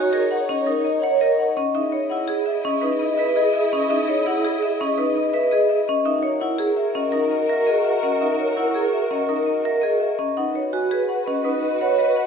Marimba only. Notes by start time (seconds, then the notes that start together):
Already playing: G#5
0.13 G#4
0.31 F#5
0.49 D#5
0.67 A#4
0.84 D#5
1.02 F#5
1.21 D#5
1.39 F#5
1.57 D#5
1.75 E5
1.92 C#5
2.10 F#5
2.28 G#4
2.46 E5
2.63 D#5
2.81 B4
2.99 D#5
3.18 E5
3.36 D#5
3.54 E5
3.72 D#5
3.90 E5
4.08 C#5
4.27 F#5
4.45 G#4
4.62 E5
4.80 D#5
4.98 B4
5.15 D#5
5.34 E5
5.51 D#5
5.69 E5
5.88 D#5
6.05 E5
6.23 C#5
6.41 F#5
6.58 G#4
6.77 E5
6.95 D#5
7.12 A#4
7.31 D#5
7.49 E5
7.67 D#5
7.85 E5
8.03 D#5
8.21 E5
8.39 C#5
8.57 F#5
8.74 G#4
8.93 E5
9.11 D#5
9.29 A#4
9.46 D#5
9.64 E5
9.82 D#5
10.00 E5
10.19 D#5
10.37 F#5
10.55 C#5
10.73 G#5
10.91 G#4
11.09 F#5
11.26 D#5
11.44 B4
11.63 D#5
11.81 F#5
11.98 D#5
12.16 F#5